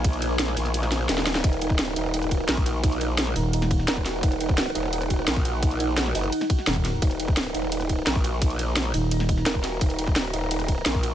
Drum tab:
RD |x-x-x-x-x-x-x-x-|x-x-x-x-x-x-x-x-|x-x-x-x-x-x-x-x-|x-x-x-x-x-x-x-x-|
HH |xxx-x-oxxxx-x-x-|xxx-x-x-xxx-x-x-|xxx-x-o-xxx-x-x-|xxx-x-x-xxx-x-x-|
SD |----oo---oo-oooo|----o-------o---|----oo---o-oooo-|----o-------o---|
BD |o---------------|o--o------o--o--|o---------o--o--|o--o------o--o--|

RD |x-x-x-x-x-x-x-x-|x-x-x-x-x-x-x-x-|x-x-x-x-x-x-x-x-|x-x-x-x-x-x-x-x-|
HH |xxx-x-oxxxx-x-x-|xxx-x-x-xxx-x-x-|xxx-x-o-xxx-x-x-|xxx-x-x-xxx-x-x-|
SD |----oo---o-oooo-|----o-------o---|----oo---o-oooo-|----o-------o---|
BD |o---------o--o--|o--o------o--o--|o---------o--o--|o--o------o--o--|